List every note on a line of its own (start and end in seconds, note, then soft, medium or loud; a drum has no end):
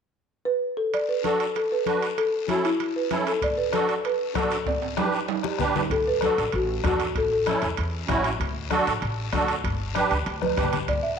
0.45 0.78 B4 medium
0.77 0.93 A4 medium
0.94 1.09 D5 medium
0.94 high conga soft
0.94 high timbale medium
0.94 long guiro medium
1.09 1.16 B4 medium
1.24 1.46 D4 medium
1.24 1.46 F#4 medium
1.24 1.46 A4 medium
1.24 1.55 A4 medium
1.24 high conga medium
1.24 high timbale medium
1.24 short guiro medium
1.40 high timbale medium
1.40 short guiro medium
1.55 1.72 A4 medium
1.55 high conga soft
1.55 high timbale medium
1.55 long guiro medium
1.72 1.86 B4 medium
1.86 2.08 D4 medium
1.86 2.08 F#4 medium
1.86 2.17 A4 medium
1.86 2.08 B4 medium
1.86 high conga medium
1.86 high timbale medium
1.86 short guiro medium
2.02 high timbale medium
2.02 short guiro medium
2.17 2.47 A4 medium
2.17 high conga soft
2.17 high timbale medium
2.17 long guiro medium
2.47 2.70 C#4 medium
2.47 2.70 E4 medium
2.47 2.65 F#4 medium
2.47 2.70 A4 medium
2.47 high conga medium
2.47 high timbale medium
2.47 short guiro medium
2.65 2.97 E4 medium
2.65 high timbale medium
2.65 short guiro medium
2.80 high conga soft
2.80 high timbale medium
2.80 long guiro medium
2.96 3.28 B4 medium
3.11 3.32 C#4 medium
3.11 3.33 E4 medium
3.11 3.33 A4 medium
3.11 high conga medium
3.11 high timbale medium
3.11 low timbale medium
3.11 short guiro medium
3.27 3.42 A4 medium
3.27 high timbale medium
3.27 short guiro medium
3.42 3.50 D5 medium
3.42 bombo low medium
3.42 high conga soft
3.42 high timbale medium
3.42 long guiro medium
3.58 3.74 B4 medium
3.72 3.94 D4 medium
3.72 3.95 F#4 medium
3.72 3.95 A4 medium
3.72 4.05 A4 medium
3.72 bombo rim medium
3.72 high conga medium
3.72 high timbale medium
3.72 short guiro medium
3.89 high timbale medium
3.89 short guiro medium
4.04 4.34 B4 medium
4.04 high conga soft
4.04 high timbale medium
4.04 long guiro medium
4.34 4.57 D4 medium
4.34 4.57 F#4 medium
4.34 4.57 A4 medium
4.34 4.64 A4 medium
4.34 bombo low medium
4.34 bombo rim medium
4.34 high conga medium
4.34 high timbale medium
4.34 short guiro medium
4.51 high timbale medium
4.51 short guiro medium
4.66 5.56 D5 medium
4.66 bombo low medium
4.66 high conga soft
4.66 high timbale medium
4.66 long guiro medium
4.82 high timbale medium
4.97 5.19 D4 medium
4.97 5.19 G4 medium
4.97 5.19 B4 medium
4.97 bombo rim medium
4.97 high conga medium
4.97 low timbale medium
4.97 short guiro medium
5.13 short guiro medium
5.28 high conga soft
5.28 low timbale medium
5.28 long guiro medium
5.43 5.93 G4 medium
5.43 bombo rim medium
5.43 high conga medium
5.58 5.81 D4 medium
5.58 5.82 G4 medium
5.58 5.82 B4 medium
5.58 bombo low medium
5.58 bombo rim medium
5.58 low conga medium
5.58 short guiro medium
5.76 low conga medium
5.76 low timbale loud
5.76 short guiro medium
5.90 6.28 D2 medium
5.90 5.98 A4 medium
5.90 bombo low medium
5.90 high conga soft
5.90 high timbale medium
5.90 long guiro medium
6.08 6.14 B4 medium
6.21 6.44 D4 medium
6.21 6.44 F#4 medium
6.21 6.45 A4 medium
6.21 6.52 A4 medium
6.21 bombo rim medium
6.21 high conga medium
6.21 high timbale medium
6.21 short guiro medium
6.38 6.50 A1 medium
6.38 high timbale medium
6.38 short guiro medium
6.52 6.78 A1 medium
6.52 6.85 F#4 medium
6.52 high conga soft
6.52 high timbale medium
6.52 long guiro medium
6.84 7.09 E2 loud
6.84 7.06 D4 medium
6.84 7.06 F#4 medium
6.84 7.14 F#4 medium
6.84 7.06 A4 medium
6.84 bombo low medium
6.84 bombo rim medium
6.84 high conga medium
6.84 high timbale medium
6.84 short guiro medium
7.00 high timbale medium
7.00 short guiro medium
7.15 7.53 A1 medium
7.15 7.24 A4 medium
7.15 bombo low medium
7.15 high conga soft
7.15 high timbale medium
7.15 long guiro medium
7.33 7.61 A4 medium
7.46 7.68 C#4 medium
7.46 7.68 E4 medium
7.46 7.69 A4 medium
7.46 bombo rim medium
7.46 high conga medium
7.46 high timbale medium
7.46 short guiro medium
7.62 7.75 E2 medium
7.62 high timbale medium
7.62 short guiro medium
7.77 8.03 E2 medium
7.77 high conga soft
7.77 high timbale medium
7.77 long guiro medium
8.07 8.34 A1 medium
8.07 8.30 C#4 medium
8.07 8.30 E4 medium
8.07 8.31 F#4 medium
8.07 bombo low medium
8.07 bombo rim medium
8.07 high conga medium
8.07 high timbale medium
8.07 short guiro medium
8.24 high timbale medium
8.24 short guiro medium
8.40 8.77 D2 medium
8.40 bombo low medium
8.40 high conga soft
8.40 high timbale medium
8.40 long guiro medium
8.70 8.93 D4 medium
8.70 8.93 F#4 medium
8.70 8.93 A4 medium
8.70 bombo rim medium
8.70 high conga medium
8.70 high timbale medium
8.70 short guiro medium
8.87 8.99 A1 medium
8.87 high timbale medium
8.87 short guiro medium
9.02 9.27 A1 medium
9.02 high conga soft
9.02 high timbale medium
9.02 long guiro medium
9.33 9.58 D2 medium
9.33 9.55 D4 medium
9.33 9.55 F#4 medium
9.33 9.55 A4 medium
9.33 bombo low medium
9.33 bombo rim medium
9.33 high conga medium
9.33 high timbale medium
9.33 short guiro medium
9.48 high timbale medium
9.48 short guiro medium
9.64 10.02 G1 medium
9.64 bombo low medium
9.64 high conga soft
9.64 high timbale medium
9.64 long guiro medium
9.95 10.17 D4 medium
9.95 10.17 G4 medium
9.95 10.17 B4 medium
9.95 bombo rim medium
9.95 high conga medium
9.95 high timbale medium
9.95 short guiro medium
10.11 10.24 D2 medium
10.11 high timbale medium
10.11 short guiro medium
10.26 10.51 D2 loud
10.26 high conga soft
10.26 high timbale medium
10.26 long guiro medium
10.42 10.85 B4 medium
10.42 bombo rim medium
10.42 high conga medium
10.56 10.83 G1 medium
10.56 10.79 D4 medium
10.56 10.79 G4 medium
10.56 10.79 B4 medium
10.56 bombo low medium
10.56 bombo rim medium
10.56 high timbale medium
10.56 short guiro medium
10.63 low conga medium
10.73 low conga medium
10.73 high timbale medium
10.73 short guiro medium
10.88 11.19 D2 medium
10.88 11.03 D5 medium
10.88 bombo low medium
10.88 high conga soft
10.88 high timbale medium
10.88 long guiro medium
11.03 11.19 E5 medium